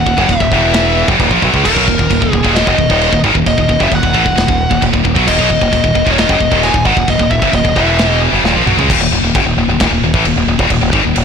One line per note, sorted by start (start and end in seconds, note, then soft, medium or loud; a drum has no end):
0.00 0.31 F#5 loud
0.06 0.17 D#1 medium
0.06 0.18 D#2 medium
0.06 0.18 A#2 medium
0.06 kick medium
0.18 0.28 F#1 loud
0.18 0.29 F#2 medium
0.18 0.29 C#3 loud
0.18 kick medium
0.29 0.40 D#1 medium
0.29 0.40 D#2 medium
0.29 0.40 A#2 medium
0.29 1.05 E5 medium
0.29 kick loud
0.29 china medium
0.40 0.51 D#1 medium
0.40 0.52 D#2 medium
0.40 0.53 A#2 medium
0.40 kick medium
0.52 1.05 E1 medium
0.52 1.08 E2 medium
0.52 1.08 B2 loud
0.52 1.08 E3 loud
0.52 kick medium
0.74 snare loud
0.74 china medium
1.08 1.19 F#1 medium
1.08 1.20 F#2 medium
1.08 1.20 C#3 loud
1.08 kick loud
1.19 1.30 D#1 loud
1.19 1.31 D#2 loud
1.19 1.30 A#2 loud
1.19 kick medium
1.19 china medium
1.31 1.42 A#1 medium
1.31 1.42 A#2 medium
1.31 1.42 F3 loud
1.31 kick medium
1.42 1.53 B1 loud
1.42 1.53 B2 medium
1.42 1.54 F#3 loud
1.42 kick medium
1.54 1.64 C#2 medium
1.54 1.64 C#3 loud
1.54 1.64 G#3 loud
1.54 kick medium
1.64 1.76 D#1 medium
1.64 1.76 D#2 medium
1.64 1.76 A#2 loud
1.64 2.31 A#4 medium
1.64 kick loud
1.64 crash loud
1.64 china medium
1.76 1.87 B1 medium
1.76 1.87 B2 medium
1.76 1.87 F#3 loud
1.76 kick medium
1.88 1.98 D#1 medium
1.88 1.98 D#2 medium
1.88 1.98 A#2 medium
1.88 kick medium
1.99 2.10 D#1 medium
1.99 2.09 D#2 medium
1.99 2.09 A#2 medium
1.99 kick medium
2.10 2.21 D#1 medium
2.10 2.20 D#2 medium
2.10 2.20 A#2 medium
2.10 kick medium
2.10 china medium
2.21 2.32 D#1 medium
2.21 2.32 D#2 medium
2.21 2.32 A#2 medium
2.21 kick medium
2.31 2.44 D#1 medium
2.31 2.43 D#2 medium
2.31 2.43 A#2 medium
2.31 2.58 G#4 medium
2.31 kick medium
2.44 2.65 D#1 loud
2.44 2.66 D#2 medium
2.44 2.66 A#2 loud
2.44 2.67 D#3 loud
2.44 kick medium
2.55 3.19 D#5 loud
2.55 snare loud
2.55 china medium
2.67 2.78 F#1 medium
2.67 2.78 F#2 medium
2.67 2.78 C#3 loud
2.67 kick loud
2.78 2.89 D#1 medium
2.78 2.90 D#2 medium
2.78 2.90 A#2 medium
2.78 kick medium
2.90 3.11 D#1 loud
2.90 3.12 D#2 medium
2.90 3.12 A#2 loud
2.90 3.12 D#3 loud
2.90 kick medium
3.01 china medium
3.13 3.23 D#1 medium
3.13 3.24 D#2 medium
3.13 3.24 A#2 medium
3.13 kick medium
3.24 3.34 G#1 loud
3.24 3.35 G#2 loud
3.24 3.35 D#3 loud
3.24 kick medium
3.35 3.45 D#1 medium
3.35 3.46 D#2 medium
3.35 3.46 A#2 medium
3.35 kick medium
3.46 3.57 D#1 medium
3.46 3.57 D#2 medium
3.46 3.57 A#2 medium
3.46 3.82 D#5 loud
3.46 kick medium
3.46 china medium
3.58 3.68 D#1 medium
3.58 3.68 D#2 medium
3.58 3.69 A#2 medium
3.58 kick medium
3.69 3.79 D#1 medium
3.69 3.79 D#2 medium
3.69 3.80 A#2 medium
3.69 kick medium
3.80 3.91 F#1 medium
3.80 3.91 F#2 medium
3.80 3.91 C#3 loud
3.80 3.94 E5 loud
3.80 kick medium
3.91 4.02 D#1 medium
3.91 4.01 D#2 medium
3.91 4.02 A#2 medium
3.91 4.83 F#5 loud
3.91 kick medium
3.91 china medium
4.02 4.13 D#1 medium
4.02 4.14 D#2 medium
4.02 4.13 A#2 medium
4.02 kick medium
4.13 4.25 A1 medium
4.13 4.24 A2 medium
4.13 4.25 E3 loud
4.13 kick medium
4.24 4.36 D#1 medium
4.24 4.34 D#2 medium
4.24 4.35 A#2 medium
4.24 kick medium
4.35 4.48 D#1 medium
4.35 4.45 D#2 medium
4.35 4.46 A#2 medium
4.35 snare loud
4.35 china medium
4.47 4.69 D#1 medium
4.47 4.65 D#2 medium
4.47 4.66 A#2 medium
4.47 kick loud
4.69 4.81 D#1 medium
4.69 4.80 D#2 medium
4.69 4.80 A#2 medium
4.69 kick medium
4.81 4.93 D#1 medium
4.81 4.91 D#2 medium
4.81 4.91 A#2 medium
4.81 kick loud
4.81 china medium
4.92 5.04 D#1 medium
4.92 5.03 D#2 medium
4.92 5.03 A#2 medium
4.92 kick medium
5.04 5.16 D#1 medium
5.04 5.16 D#2 medium
5.04 5.15 A#2 medium
5.04 kick medium
5.16 5.27 B1 medium
5.16 5.26 B2 loud
5.16 5.26 F#3 loud
5.16 kick medium
5.27 5.38 D#1 loud
5.27 5.38 D#2 loud
5.27 5.37 A#2 loud
5.27 6.11 D#5 loud
5.27 kick medium
5.27 crash loud
5.27 china medium
5.38 5.49 B1 loud
5.38 5.49 B2 medium
5.38 5.49 F#3 loud
5.38 kick medium
5.49 5.61 D#1 medium
5.49 5.60 D#2 medium
5.49 5.61 A#2 medium
5.49 kick medium
5.61 5.72 D#1 medium
5.61 5.71 D#2 medium
5.61 5.71 A#2 medium
5.61 kick medium
5.72 5.83 D#1 medium
5.72 5.82 D#2 medium
5.72 5.82 A#2 medium
5.72 kick loud
5.72 china medium
5.84 5.94 D#1 medium
5.84 5.93 D#2 medium
5.84 5.93 A#2 medium
5.84 kick medium
5.94 6.06 D#1 medium
5.94 6.04 D#2 medium
5.94 6.05 A#2 medium
5.94 kick medium
6.06 6.28 D#1 loud
6.06 6.28 D#2 loud
6.06 6.28 A#2 medium
6.06 6.28 D#3 loud
6.06 kick medium
6.12 6.18 C#5 medium
6.18 6.65 D#5 loud
6.18 snare loud
6.18 china medium
6.28 6.40 F#1 loud
6.28 6.39 F#2 medium
6.28 6.40 C#3 loud
6.28 kick loud
6.40 6.51 D#1 medium
6.40 6.50 D#2 medium
6.40 6.50 A#2 medium
6.40 kick medium
6.51 6.73 D#1 medium
6.51 6.73 D#2 loud
6.51 6.73 A#2 loud
6.51 6.74 D#3 loud
6.51 kick medium
6.63 6.86 G#5 loud
6.63 china medium
6.74 6.85 D#1 medium
6.74 6.86 D#2 medium
6.74 6.85 A#2 medium
6.74 kick medium
6.85 6.96 G#1 medium
6.85 6.96 G#2 medium
6.85 6.97 D#3 loud
6.85 7.09 F#5 medium
6.85 kick medium
6.97 7.07 D#1 medium
6.97 7.08 D#2 medium
6.97 7.08 A#2 medium
6.97 kick medium
7.08 7.19 D#1 medium
7.08 7.19 D#2 medium
7.08 7.19 A#2 medium
7.08 7.31 D#5 loud
7.08 kick medium
7.08 china medium
7.19 7.30 D#1 medium
7.19 7.30 D#2 medium
7.19 7.30 A#2 medium
7.19 kick medium
7.31 7.41 D#1 medium
7.31 7.41 D#2 medium
7.31 7.42 A#2 medium
7.31 7.55 E5 medium
7.31 kick medium
7.42 7.53 F#1 loud
7.42 7.53 F#2 medium
7.42 7.53 C#3 loud
7.42 kick medium
7.53 7.64 D#1 medium
7.53 7.63 D#2 medium
7.53 7.64 A#2 medium
7.53 7.76 D#5 medium
7.53 kick loud
7.53 china medium
7.64 7.75 D#1 medium
7.64 7.76 D#2 medium
7.64 7.76 A#2 medium
7.64 kick medium
7.76 8.29 E1 medium
7.76 8.31 E2 medium
7.76 8.32 B2 medium
7.76 8.32 E3 loud
7.76 8.19 E5 medium
7.76 kick medium
7.99 snare loud
7.99 china medium
8.32 8.43 F#1 medium
8.32 8.43 F#2 medium
8.32 8.43 C#3 loud
8.44 8.55 D#1 medium
8.44 8.55 D#2 medium
8.44 8.54 A#2 loud
8.44 snare medium
8.55 8.66 A#1 medium
8.55 8.66 A#2 medium
8.55 8.66 F3 loud
8.66 8.77 B1 medium
8.66 8.77 B2 medium
8.66 8.78 F#3 loud
8.66 mid tom medium
8.77 8.88 C#2 medium
8.77 8.89 C#3 medium
8.77 8.89 G#3 loud
8.77 floor tom medium
8.90 8.99 D#1 loud
8.90 9.00 D#2 medium
8.90 9.01 A#2 loud
8.90 kick loud
8.90 crash loud
8.90 crash medium
9.00 9.11 D#1 medium
9.00 9.12 D#2 medium
9.00 9.12 A#2 medium
9.11 9.22 D#1 medium
9.11 9.22 D#2 medium
9.11 9.23 A#2 medium
9.22 9.33 D#1 medium
9.22 9.35 D#2 medium
9.22 9.35 A#2 medium
9.35 9.45 F#1 loud
9.35 9.46 F#2 medium
9.35 9.46 C#3 loud
9.35 kick loud
9.35 crash medium
9.45 9.56 D#1 medium
9.45 9.56 D#2 medium
9.45 9.57 A#2 medium
9.57 9.67 D#1 medium
9.57 9.67 D#2 medium
9.57 9.68 A#2 medium
9.68 9.79 D#1 medium
9.68 9.79 D#2 medium
9.68 9.80 A#2 medium
9.80 9.90 D#1 loud
9.80 9.91 D#2 loud
9.80 9.91 A#2 loud
9.80 kick loud
9.80 snare loud
9.80 crash medium
9.91 10.01 D#1 medium
9.91 10.02 D#2 medium
9.91 10.02 A#2 medium
10.02 10.13 D#1 medium
10.02 10.14 D#2 medium
10.02 10.14 A#2 medium
10.14 10.24 A1 loud
10.14 10.25 A2 medium
10.14 10.25 E3 loud
10.14 kick loud
10.25 10.35 D#1 medium
10.25 10.36 D#2 medium
10.25 10.36 A#2 medium
10.25 crash medium
10.36 10.47 D#1 medium
10.36 10.47 D#2 medium
10.36 10.47 A#2 medium
10.47 10.58 D#1 medium
10.47 10.59 D#2 medium
10.47 10.60 A#2 medium
10.59 10.70 D#1 loud
10.59 10.69 D#2 medium
10.59 10.70 A#2 loud
10.59 kick loud
10.70 10.81 D#1 medium
10.70 10.80 D#2 medium
10.70 10.81 A#2 medium
10.70 kick medium
10.70 crash medium
10.82 10.92 D#1 medium
10.82 10.93 D#2 medium
10.82 10.93 A#2 medium
10.93 11.04 G#1 loud
10.93 11.04 G#2 medium
10.93 11.04 D#3 loud
10.93 kick loud
11.04 11.15 D#1 medium
11.04 11.14 D#2 medium
11.04 11.15 A#2 medium
11.15 11.24 D#1 medium
11.15 11.24 D#2 medium
11.15 11.24 A#2 medium
11.15 crash medium